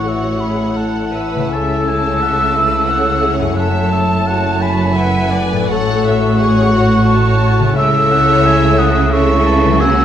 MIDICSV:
0, 0, Header, 1, 10, 480
1, 0, Start_track
1, 0, Tempo, 708383
1, 523, Tempo, 768246
1, 1002, Time_signature, 3, 2, 24, 8
1, 1003, Tempo, 677966
1, 2443, Tempo, 695249
1, 3403, Tempo, 738007
1, 3883, Tempo, 685714
1, 6926, End_track
2, 0, Start_track
2, 0, Title_t, "Flute"
2, 0, Program_c, 0, 73
2, 0, Note_on_c, 0, 85, 94
2, 274, Note_on_c, 0, 83, 73
2, 284, Note_off_c, 0, 85, 0
2, 518, Note_on_c, 0, 81, 79
2, 527, Note_off_c, 0, 83, 0
2, 994, Note_off_c, 0, 81, 0
2, 998, Note_on_c, 0, 88, 120
2, 2282, Note_off_c, 0, 88, 0
2, 2450, Note_on_c, 0, 81, 118
2, 3165, Note_on_c, 0, 80, 92
2, 3176, Note_off_c, 0, 81, 0
2, 3399, Note_on_c, 0, 78, 100
2, 3409, Note_off_c, 0, 80, 0
2, 3712, Note_off_c, 0, 78, 0
2, 3883, Note_on_c, 0, 85, 127
2, 5299, Note_off_c, 0, 85, 0
2, 5327, Note_on_c, 0, 88, 127
2, 6043, Note_on_c, 0, 87, 108
2, 6053, Note_off_c, 0, 88, 0
2, 6282, Note_on_c, 0, 85, 116
2, 6292, Note_off_c, 0, 87, 0
2, 6755, Note_on_c, 0, 88, 127
2, 6765, Note_off_c, 0, 85, 0
2, 6926, Note_off_c, 0, 88, 0
2, 6926, End_track
3, 0, Start_track
3, 0, Title_t, "Oboe"
3, 0, Program_c, 1, 68
3, 56, Note_on_c, 1, 76, 52
3, 525, Note_on_c, 1, 78, 50
3, 534, Note_off_c, 1, 76, 0
3, 753, Note_off_c, 1, 78, 0
3, 756, Note_on_c, 1, 76, 58
3, 998, Note_on_c, 1, 81, 71
3, 1008, Note_off_c, 1, 76, 0
3, 1244, Note_on_c, 1, 80, 61
3, 1254, Note_off_c, 1, 81, 0
3, 1480, Note_off_c, 1, 80, 0
3, 1484, Note_on_c, 1, 78, 69
3, 1722, Note_on_c, 1, 76, 68
3, 1732, Note_off_c, 1, 78, 0
3, 1961, Note_on_c, 1, 78, 65
3, 1971, Note_off_c, 1, 76, 0
3, 2188, Note_on_c, 1, 76, 59
3, 2199, Note_off_c, 1, 78, 0
3, 2431, Note_off_c, 1, 76, 0
3, 2435, Note_on_c, 1, 78, 68
3, 2679, Note_off_c, 1, 78, 0
3, 2683, Note_on_c, 1, 76, 76
3, 2924, Note_on_c, 1, 78, 84
3, 2934, Note_off_c, 1, 76, 0
3, 3164, Note_on_c, 1, 83, 85
3, 3174, Note_off_c, 1, 78, 0
3, 3702, Note_off_c, 1, 83, 0
3, 3883, Note_on_c, 1, 81, 73
3, 4113, Note_off_c, 1, 81, 0
3, 4126, Note_on_c, 1, 78, 89
3, 5325, Note_on_c, 1, 76, 84
3, 5336, Note_off_c, 1, 78, 0
3, 5569, Note_on_c, 1, 78, 82
3, 5580, Note_off_c, 1, 76, 0
3, 5811, Note_on_c, 1, 80, 96
3, 5822, Note_off_c, 1, 78, 0
3, 6039, Note_on_c, 1, 78, 89
3, 6050, Note_off_c, 1, 80, 0
3, 6270, Note_on_c, 1, 76, 78
3, 6281, Note_off_c, 1, 78, 0
3, 6506, Note_off_c, 1, 76, 0
3, 6510, Note_on_c, 1, 81, 79
3, 6750, Note_on_c, 1, 80, 84
3, 6761, Note_off_c, 1, 81, 0
3, 6926, Note_off_c, 1, 80, 0
3, 6926, End_track
4, 0, Start_track
4, 0, Title_t, "Violin section"
4, 0, Program_c, 2, 48
4, 0, Note_on_c, 2, 78, 54
4, 977, Note_off_c, 2, 78, 0
4, 986, Note_on_c, 2, 76, 61
4, 1235, Note_on_c, 2, 81, 58
4, 1244, Note_off_c, 2, 76, 0
4, 1936, Note_off_c, 2, 81, 0
4, 1948, Note_on_c, 2, 78, 61
4, 2435, Note_on_c, 2, 76, 74
4, 2437, Note_off_c, 2, 78, 0
4, 2679, Note_on_c, 2, 81, 70
4, 2684, Note_off_c, 2, 76, 0
4, 3399, Note_off_c, 2, 81, 0
4, 3408, Note_on_c, 2, 80, 71
4, 3877, Note_on_c, 2, 78, 83
4, 3886, Note_off_c, 2, 80, 0
4, 4122, Note_off_c, 2, 78, 0
4, 4138, Note_on_c, 2, 76, 73
4, 4360, Note_on_c, 2, 78, 74
4, 4371, Note_off_c, 2, 76, 0
4, 4840, Note_off_c, 2, 78, 0
4, 4843, Note_on_c, 2, 81, 73
4, 5323, Note_on_c, 2, 76, 85
4, 5327, Note_off_c, 2, 81, 0
4, 6257, Note_off_c, 2, 76, 0
4, 6287, Note_on_c, 2, 76, 80
4, 6754, Note_off_c, 2, 76, 0
4, 6760, Note_on_c, 2, 78, 76
4, 6926, Note_off_c, 2, 78, 0
4, 6926, End_track
5, 0, Start_track
5, 0, Title_t, "Violin section"
5, 0, Program_c, 3, 48
5, 0, Note_on_c, 3, 73, 54
5, 978, Note_off_c, 3, 73, 0
5, 992, Note_on_c, 3, 73, 56
5, 1477, Note_off_c, 3, 73, 0
5, 1489, Note_on_c, 3, 76, 61
5, 1722, Note_on_c, 3, 71, 68
5, 1726, Note_off_c, 3, 76, 0
5, 1950, Note_on_c, 3, 73, 66
5, 1957, Note_off_c, 3, 71, 0
5, 2429, Note_off_c, 3, 73, 0
5, 2437, Note_on_c, 3, 73, 63
5, 2912, Note_off_c, 3, 73, 0
5, 2920, Note_on_c, 3, 73, 67
5, 3389, Note_off_c, 3, 73, 0
5, 3389, Note_on_c, 3, 76, 77
5, 3632, Note_off_c, 3, 76, 0
5, 3636, Note_on_c, 3, 74, 68
5, 3877, Note_on_c, 3, 73, 71
5, 3882, Note_off_c, 3, 74, 0
5, 4362, Note_off_c, 3, 73, 0
5, 4370, Note_on_c, 3, 73, 78
5, 4836, Note_off_c, 3, 73, 0
5, 4848, Note_on_c, 3, 73, 79
5, 5320, Note_off_c, 3, 73, 0
5, 5331, Note_on_c, 3, 73, 88
5, 6261, Note_off_c, 3, 73, 0
5, 6290, Note_on_c, 3, 73, 75
5, 6521, Note_off_c, 3, 73, 0
5, 6524, Note_on_c, 3, 71, 64
5, 6762, Note_on_c, 3, 70, 77
5, 6763, Note_off_c, 3, 71, 0
5, 6926, Note_off_c, 3, 70, 0
5, 6926, End_track
6, 0, Start_track
6, 0, Title_t, "Viola section"
6, 0, Program_c, 4, 48
6, 36, Note_on_c, 4, 66, 54
6, 276, Note_on_c, 4, 68, 55
6, 279, Note_off_c, 4, 66, 0
6, 513, Note_on_c, 4, 69, 53
6, 519, Note_off_c, 4, 68, 0
6, 748, Note_on_c, 4, 71, 61
6, 756, Note_off_c, 4, 69, 0
6, 993, Note_on_c, 4, 69, 60
6, 996, Note_off_c, 4, 71, 0
6, 1944, Note_off_c, 4, 69, 0
6, 1953, Note_on_c, 4, 69, 68
6, 2188, Note_off_c, 4, 69, 0
6, 2193, Note_on_c, 4, 68, 66
6, 2438, Note_on_c, 4, 69, 60
6, 2442, Note_off_c, 4, 68, 0
6, 2927, Note_off_c, 4, 69, 0
6, 2940, Note_on_c, 4, 66, 64
6, 3408, Note_off_c, 4, 66, 0
6, 3409, Note_on_c, 4, 71, 68
6, 3886, Note_off_c, 4, 71, 0
6, 3888, Note_on_c, 4, 69, 78
6, 4369, Note_on_c, 4, 68, 79
6, 4370, Note_off_c, 4, 69, 0
6, 4601, Note_off_c, 4, 68, 0
6, 4609, Note_on_c, 4, 66, 80
6, 4830, Note_off_c, 4, 66, 0
6, 4838, Note_on_c, 4, 66, 76
6, 5315, Note_off_c, 4, 66, 0
6, 5317, Note_on_c, 4, 69, 81
6, 6254, Note_off_c, 4, 69, 0
6, 6286, Note_on_c, 4, 69, 75
6, 6753, Note_off_c, 4, 69, 0
6, 6761, Note_on_c, 4, 66, 74
6, 6926, Note_off_c, 4, 66, 0
6, 6926, End_track
7, 0, Start_track
7, 0, Title_t, "French horn section"
7, 0, Program_c, 5, 60
7, 0, Note_on_c, 5, 52, 54
7, 0, Note_on_c, 5, 64, 53
7, 977, Note_off_c, 5, 52, 0
7, 998, Note_on_c, 5, 57, 62
7, 2416, Note_off_c, 5, 64, 0
7, 2437, Note_on_c, 5, 64, 66
7, 3855, Note_off_c, 5, 57, 0
7, 3855, Note_off_c, 5, 64, 0
7, 3879, Note_on_c, 5, 66, 74
7, 3882, Note_on_c, 5, 57, 70
7, 5215, Note_off_c, 5, 57, 0
7, 5215, Note_off_c, 5, 66, 0
7, 5334, Note_on_c, 5, 64, 89
7, 5337, Note_on_c, 5, 57, 80
7, 6263, Note_off_c, 5, 64, 0
7, 6264, Note_off_c, 5, 57, 0
7, 6290, Note_on_c, 5, 57, 76
7, 6294, Note_on_c, 5, 64, 73
7, 6755, Note_off_c, 5, 57, 0
7, 6757, Note_off_c, 5, 64, 0
7, 6758, Note_on_c, 5, 58, 78
7, 6761, Note_on_c, 5, 66, 74
7, 6926, Note_off_c, 5, 58, 0
7, 6926, Note_off_c, 5, 66, 0
7, 6926, End_track
8, 0, Start_track
8, 0, Title_t, "Harp"
8, 0, Program_c, 6, 46
8, 0, Note_on_c, 6, 45, 53
8, 0, Note_on_c, 6, 57, 44
8, 0, Note_on_c, 6, 61, 42
8, 0, Note_on_c, 6, 64, 41
8, 887, Note_on_c, 6, 49, 53
8, 907, Note_off_c, 6, 57, 0
8, 914, Note_on_c, 6, 57, 45
8, 936, Note_off_c, 6, 61, 0
8, 944, Note_on_c, 6, 61, 44
8, 962, Note_off_c, 6, 45, 0
8, 962, Note_off_c, 6, 64, 0
8, 970, Note_on_c, 6, 64, 45
8, 2317, Note_on_c, 6, 42, 63
8, 2342, Note_off_c, 6, 57, 0
8, 2350, Note_on_c, 6, 57, 54
8, 2370, Note_off_c, 6, 61, 0
8, 2378, Note_on_c, 6, 61, 54
8, 2398, Note_off_c, 6, 49, 0
8, 2404, Note_off_c, 6, 64, 0
8, 2412, Note_on_c, 6, 64, 56
8, 3767, Note_on_c, 6, 45, 70
8, 3788, Note_off_c, 6, 57, 0
8, 3796, Note_on_c, 6, 57, 59
8, 3818, Note_off_c, 6, 61, 0
8, 3825, Note_on_c, 6, 61, 56
8, 3844, Note_off_c, 6, 42, 0
8, 3855, Note_on_c, 6, 66, 57
8, 3889, Note_off_c, 6, 64, 0
8, 5206, Note_on_c, 6, 49, 69
8, 5226, Note_off_c, 6, 57, 0
8, 5235, Note_on_c, 6, 57, 65
8, 5258, Note_off_c, 6, 61, 0
8, 5266, Note_on_c, 6, 61, 56
8, 5284, Note_off_c, 6, 45, 0
8, 5300, Note_on_c, 6, 64, 66
8, 5331, Note_off_c, 6, 66, 0
8, 6632, Note_off_c, 6, 49, 0
8, 6641, Note_on_c, 6, 49, 67
8, 6672, Note_on_c, 6, 54, 62
8, 6701, Note_on_c, 6, 58, 56
8, 6734, Note_on_c, 6, 66, 56
8, 6736, Note_off_c, 6, 57, 0
8, 6926, Note_off_c, 6, 49, 0
8, 6926, Note_off_c, 6, 54, 0
8, 6926, Note_off_c, 6, 58, 0
8, 6926, Note_off_c, 6, 61, 0
8, 6926, Note_off_c, 6, 64, 0
8, 6926, Note_off_c, 6, 66, 0
8, 6926, End_track
9, 0, Start_track
9, 0, Title_t, "Cello section"
9, 0, Program_c, 7, 48
9, 0, Note_on_c, 7, 45, 58
9, 977, Note_off_c, 7, 45, 0
9, 1000, Note_on_c, 7, 49, 69
9, 2414, Note_off_c, 7, 49, 0
9, 2443, Note_on_c, 7, 42, 77
9, 3857, Note_off_c, 7, 42, 0
9, 3890, Note_on_c, 7, 45, 87
9, 5303, Note_off_c, 7, 45, 0
9, 5333, Note_on_c, 7, 49, 98
9, 6926, Note_off_c, 7, 49, 0
9, 6926, End_track
10, 0, Start_track
10, 0, Title_t, "Double bass section"
10, 0, Program_c, 8, 48
10, 0, Note_on_c, 8, 33, 58
10, 977, Note_off_c, 8, 33, 0
10, 999, Note_on_c, 8, 37, 67
10, 2413, Note_off_c, 8, 37, 0
10, 2437, Note_on_c, 8, 30, 71
10, 3855, Note_off_c, 8, 30, 0
10, 3886, Note_on_c, 8, 33, 81
10, 5301, Note_off_c, 8, 33, 0
10, 5329, Note_on_c, 8, 37, 82
10, 6926, Note_off_c, 8, 37, 0
10, 6926, End_track
0, 0, End_of_file